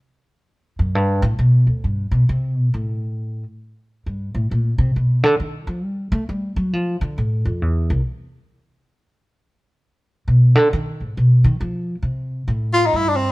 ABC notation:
X:1
M:3/4
L:1/16
Q:"Swing" 1/4=135
K:Gmix
V:1 name="Tenor saxophone"
z12 | z12 | z12 | z12 |
z12 | z12 | z12 | z12 |
z12 | z6 F _E =E D C z |]
V:2 name="Upright bass" clef=bass
z6 ^F,,2 G,,2 A,,2 | B,,2 D,,2 G,,2 B,,2 C,2 B,,2 | A,,6 z6 | G,,2 A,,2 _B,,2 C,2 =B,,2 D,2 |
_E,2 F,2 G,2 A,2 G,2 ^F,2 | F,2 D,2 A,,2 F,,2 E,,2 C,,2 | z12 | z8 B,,2 D,2 |
_E,2 _A,,2 _C,2 E,2 F,3 z | C,4 A,,4 G,,4 |]